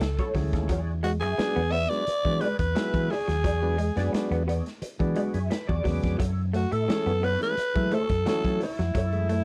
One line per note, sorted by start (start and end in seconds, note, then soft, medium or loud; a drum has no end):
0.00 0.16 C#2 medium
0.00 0.36 A4 medium
0.00 muted clean electric guitar stroke soft
0.00 snare loud
0.00 closed hi-hat medium
0.19 0.30 F#3 medium
0.19 0.34 E4 medium
0.19 0.35 A4 medium
0.19 0.36 C#5 medium
0.19 kick loud
0.19 closed hi-hat soft
0.34 0.53 D2 medium
0.34 0.69 E3 medium
0.34 0.47 F#3 medium
0.34 0.69 G#3 medium
0.34 0.69 A3 medium
0.34 0.69 C#4 medium
0.34 muted clean electric guitar stroke soft
0.34 kick medium
0.34 snare soft
0.34 open hi-hat medium
0.53 0.69 D#2 medium
0.53 muted clean electric guitar stroke medium
0.53 kick medium
0.53 snare soft
0.53 closed hi-hat medium
0.69 1.22 E2 loud
0.69 0.82 F#3 medium
0.69 0.91 F#4 medium
0.69 0.91 G#4 medium
0.69 0.92 D5 medium
0.69 kick loud
0.69 closed hi-hat loud
1.03 1.16 G#3 medium
1.03 1.12 F#4 medium
1.03 muted clean electric guitar stroke soft
1.03 closed hi-hat medium
1.20 1.36 F#2 medium
1.20 1.37 F#4 soft
1.20 1.73 G#4 medium
1.20 1.37 G#4 medium
1.20 1.36 E5 medium
1.20 muted clean electric guitar stroke soft
1.20 closed hi-hat soft
1.37 1.62 F#3 medium
1.37 1.62 G#3 medium
1.37 1.62 B3 medium
1.37 1.62 D4 medium
1.37 muted fingered electric bass stroke soft
1.37 muted clean electric guitar stroke soft
1.37 snare loud
1.37 closed hi-hat medium
1.56 1.85 E2 medium
1.56 1.67 B3 medium
1.56 closed hi-hat soft
1.72 1.84 B3 medium
1.72 1.89 F#4 medium
1.72 1.89 G#4 medium
1.72 1.89 D5 medium
1.72 1.91 E5 loud
1.72 open hi-hat medium
1.89 2.05 F#3 medium
1.89 2.05 G#3 medium
1.89 2.05 B3 medium
1.89 2.05 D4 medium
1.89 2.43 D5 loud
1.89 snare soft
1.89 closed hi-hat medium
2.07 muted fingered electric bass stroke medium
2.07 muted clean electric guitar stroke medium
2.07 closed hi-hat medium
2.25 2.39 E3 medium
2.25 2.48 F#3 medium
2.25 2.48 G#3 medium
2.25 2.48 B3 medium
2.25 2.48 D4 medium
2.25 muted clean electric guitar stroke medium
2.25 kick medium
2.25 closed hi-hat soft
2.41 2.53 G#3 medium
2.41 2.62 F#4 medium
2.41 2.60 G#4 medium
2.41 2.59 B4 medium
2.41 2.59 D5 loud
2.41 closed hi-hat medium
2.59 2.73 E2 medium
2.59 3.12 B4 medium
2.59 muted clean electric guitar stroke medium
2.59 kick loud
2.59 closed hi-hat medium
2.75 3.15 F#3 medium
2.75 2.88 F#3 medium
2.75 3.15 G#3 medium
2.75 3.15 B3 medium
2.75 3.15 E4 medium
2.75 muted clean electric guitar stroke soft
2.75 snare loud
2.75 closed hi-hat medium
2.94 3.08 E3 loud
2.94 kick loud
2.94 closed hi-hat soft
3.10 3.27 F#4 medium
3.10 4.14 G#4 medium
3.10 3.27 G#4 medium
3.10 3.28 D5 medium
3.10 muted clean electric guitar stroke soft
3.10 snare soft
3.10 open hi-hat medium
3.28 3.44 D#2 medium
3.28 3.39 F#3 medium
3.28 muted clean electric guitar stroke soft
3.28 snare soft
3.28 closed hi-hat medium
3.44 3.89 E2 loud
3.44 3.56 F#3 medium
3.44 3.65 F#4 medium
3.44 3.65 G#4 medium
3.44 3.66 D5 medium
3.44 kick loud
3.44 closed hi-hat loud
3.62 3.77 F#3 medium
3.62 3.77 G#3 medium
3.62 3.77 B3 medium
3.62 3.78 D4 medium
3.78 3.91 G#3 medium
3.78 muted clean electric guitar stroke soft
3.78 closed hi-hat medium
3.96 4.10 F#2 medium
3.96 4.43 F#3 medium
3.96 4.43 G#3 medium
3.96 4.43 B3 medium
3.96 4.43 D4 loud
3.96 4.12 F#4 medium
3.96 4.12 G#4 medium
3.96 4.12 D5 medium
3.96 muted clean electric guitar stroke soft
3.96 snare soft
3.96 closed hi-hat soft
4.13 muted clean electric guitar stroke soft
4.13 muted fingered electric bass stroke soft
4.13 snare loud
4.13 closed hi-hat medium
4.31 4.60 E2 medium
4.31 4.42 B3 medium
4.31 closed hi-hat soft
4.47 4.60 B3 medium
4.47 4.64 F#4 medium
4.47 4.64 G#4 medium
4.47 4.64 D5 medium
4.47 closed hi-hat medium
4.66 snare soft
4.66 closed hi-hat soft
4.82 muted clean electric guitar stroke soft
4.82 muted fingered electric bass stroke soft
4.82 closed hi-hat medium
4.99 5.14 E3 medium
4.99 5.39 F#3 medium
4.99 5.39 G#3 medium
4.99 5.39 B3 medium
4.99 5.39 D4 medium
4.99 muted clean electric guitar stroke soft
4.99 kick medium
4.99 closed hi-hat soft
5.15 5.29 G#3 medium
5.15 5.32 F#4 medium
5.15 5.33 F#4 medium
5.15 5.33 G#4 medium
5.15 5.33 D5 medium
5.15 closed hi-hat medium
5.34 5.48 F#2 medium
5.34 5.49 F#4 soft
5.34 5.49 G#4 medium
5.34 5.49 E5 medium
5.34 closed hi-hat medium
5.50 5.68 B4 medium
5.50 muted clean electric guitar stroke soft
5.50 snare loud
5.50 closed hi-hat medium
5.67 5.83 E2 medium
5.67 5.80 F#3 medium
5.67 5.84 F#4 medium
5.67 5.84 G#4 medium
5.67 5.85 D5 medium
5.67 5.83 D5 medium
5.67 kick loud
5.84 6.01 E2 medium
5.84 6.19 C#3 medium
5.84 6.19 F#3 medium
5.84 5.97 F#3 medium
5.84 6.19 G#3 medium
5.84 6.19 B3 medium
5.84 6.17 D5 medium
5.84 muted clean electric guitar stroke medium
5.84 kick medium
5.84 snare soft
5.84 open hi-hat medium
6.02 6.17 F2 medium
6.02 muted clean electric guitar stroke soft
6.02 kick medium
6.02 snare soft
6.02 closed hi-hat medium
6.18 6.64 F#2 loud
6.18 6.32 F#3 medium
6.18 6.40 E4 medium
6.18 6.40 A4 medium
6.18 6.40 C#5 medium
6.18 kick loud
6.18 closed hi-hat loud
6.53 6.66 A3 medium
6.53 6.74 F#4 medium
6.53 muted clean electric guitar stroke soft
6.53 closed hi-hat medium
6.71 6.86 A2 medium
6.71 6.86 E4 medium
6.71 6.87 A4 soft
6.71 7.26 A4 loud
6.71 6.86 E5 medium
6.71 muted clean electric guitar stroke soft
6.71 closed hi-hat soft
6.88 7.13 E3 medium
6.88 7.13 G#3 medium
6.88 7.13 A3 medium
6.88 7.13 C#4 medium
6.88 muted clean electric guitar stroke soft
6.88 muted fingered electric bass stroke soft
6.88 snare loud
6.88 closed hi-hat medium
7.06 7.36 F#2 medium
7.06 7.17 B3 medium
7.06 closed hi-hat soft
7.22 7.35 B3 medium
7.22 7.39 E4 medium
7.22 7.39 A4 medium
7.22 7.42 B4 loud
7.22 7.40 C#5 medium
7.22 open hi-hat medium
7.40 7.56 E3 medium
7.40 7.56 G#3 medium
7.40 7.56 A3 medium
7.40 7.56 C#4 medium
7.40 7.96 B4 loud
7.40 muted clean electric guitar stroke soft
7.40 snare soft
7.40 closed hi-hat medium
7.57 muted fingered electric bass stroke medium
7.57 muted clean electric guitar stroke soft
7.57 closed hi-hat medium
7.75 7.98 E3 medium
7.75 7.89 F#3 medium
7.75 7.98 G#3 medium
7.75 7.98 A3 medium
7.75 7.98 E4 medium
7.75 muted clean electric guitar stroke soft
7.75 kick loud
7.75 closed hi-hat soft
7.91 8.04 A3 medium
7.91 8.13 E4 medium
7.91 8.10 A4 medium
7.91 8.27 A4 loud
7.91 8.09 C#5 loud
7.91 closed hi-hat medium
8.09 8.24 F#2 medium
8.09 muted clean electric guitar stroke medium
8.09 kick loud
8.09 closed hi-hat medium
8.26 8.66 E3 medium
8.26 8.66 F#3 medium
8.26 8.38 F#3 medium
8.26 8.66 A3 medium
8.26 8.66 C#4 medium
8.26 8.60 A4 loud
8.26 muted clean electric guitar stroke soft
8.26 snare loud
8.26 closed hi-hat medium
8.45 8.58 F#3 medium
8.45 kick medium
8.45 closed hi-hat soft
8.60 8.78 E4 medium
8.60 9.44 E4 medium
8.60 8.78 A4 medium
8.60 8.78 C#5 medium
8.60 muted clean electric guitar stroke soft
8.60 snare soft
8.60 open hi-hat medium
8.79 8.93 F2 medium
8.79 8.90 F#3 medium
8.79 muted clean electric guitar stroke soft
8.79 snare soft
8.79 closed hi-hat medium
8.95 9.40 F#2 loud
8.95 9.07 F#3 loud
8.95 9.16 E4 medium
8.95 9.16 A4 medium
8.95 9.17 C#5 medium
8.95 kick loud
8.95 closed hi-hat medium
9.13 9.28 E3 medium
9.13 9.28 G#3 medium
9.13 9.28 A3 medium
9.13 9.28 E4 medium
9.13 closed hi-hat soft
9.29 9.42 A3 medium
9.29 muted clean electric guitar stroke soft
9.29 closed hi-hat medium